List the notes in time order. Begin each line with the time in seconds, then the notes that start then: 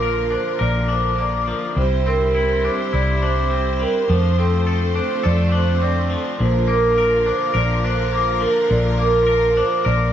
Already playing: A#1 A#2 D3 F3 A#3 D4 F4 A#4
0.02 A#4
0.30 D4 C5
0.59 A#1 A#4 D5
0.88 D4 C5
1.18 A#3 D5
1.48 F3
1.76 C2 C3 G3 C4 E4 C5
2.06 C4 A#4
2.35 E4
2.64 D4 C5
2.93 C2 E4 D5
3.23 D4 C5
3.50 C4
3.80 G3 A#4
4.09 F2 D3 F3 A3 C4 F4
4.39 C4 A4
4.67 A4
4.95 D4 C5
5.23 F2 A4 D5
5.52 D4 C5
5.82 C4 D5
6.10 F3
6.39 A#1 A#2 F3 A#3 F4 A#4 C5
6.68 A#3 A#4
6.98 A#4
7.26 D4
7.54 A#1 A#4 D5
7.84 D4 C5
8.12 A#3
8.40 F3 A#4
8.69 A#1 A#2 D5
8.98 A#3 A#4
9.27 A#4
9.57 D4
9.85 A#1 A#4 D5